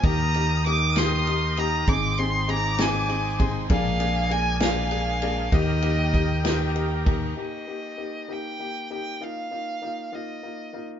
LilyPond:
<<
  \new Staff \with { instrumentName = "Violin section" } { \time 6/8 \key ees \major \tempo 4. = 65 ees'''2. | c'''4 d'''4. c'''8 | aes''2. | g''2~ g''8 bes''8 |
r2. | r2. | }
  \new Staff \with { instrumentName = "Violin" } { \time 6/8 \key ees \major bes''4 d'''8 c'''4 bes''8 | d'''8 c'''8 bes''8 aes''4 r8 | f''4 aes''8 f''4. | ees''2 r4 |
ees''4. g''4 g''8 | f''4. ees''4 r8 | }
  \new Staff \with { instrumentName = "Tonewheel organ" } { \time 6/8 \key ees \major << { <ees g' bes'>2. | r2. | <bes d'>2. | <ees g' bes'>2. |
r2. | r2. | } \\ { ees'2. | aes2.~ | aes2. | ees'2. |
r2. | r2. | } >> }
  \new Staff \with { instrumentName = "Upright piano" } { \time 6/8 \key ees \major <bes ees' g'>8 <bes ees' g'>8 <bes ees' g'>8 <bes ees' g'>8 <bes ees' g'>8 <bes ees' g'>8 | <c' ees' aes'>8 <c' ees' aes'>8 <c' ees' aes'>8 <c' ees' aes'>8 <c' ees' aes'>8 <c' ees' aes'>8 | <bes d' aes'>8 <bes d' aes'>8 <bes d' aes'>8 <bes d' aes'>8 <bes d' aes'>8 <bes d' aes'>8 | <bes ees' g'>8 <bes ees' g'>8 <bes ees' g'>8 <bes ees' g'>8 <bes ees' g'>8 <bes ees' g'>8 |
<bes ees' g'>8 <bes ees' g'>8 <bes ees' g'>8 <bes ees' g'>8 <bes ees' g'>8 <bes ees' g'>8 | <bes ees' f'>8 <bes ees' f'>8 <bes ees' f'>8 <bes ees' f'>8 <bes ees' f'>8 <bes ees' f'>8 | }
  \new Staff \with { instrumentName = "Fingered electric bass" } { \clef bass \time 6/8 \key ees \major ees,2. | aes,,2. | bes,,2. | ees,2. |
r2. | r2. | }
  \new DrumStaff \with { instrumentName = "Drums" } \drummode { \time 6/8 <bd cymr>8 cymr8 cymr8 <cymr sn>8 cymr8 cymr8 | <bd cymr>8 cymr8 cymr8 <cymr sn>8 cymr8 <bd cymr>8 | <bd cymr>8 cymr8 cymr8 <cymr sn>8 cymr8 cymr8 | <bd cymr>8 cymr8 <bd cymr>8 <cymr sn>8 cymr8 <bd cymr>8 |
r4. r4. | r4. r4. | }
>>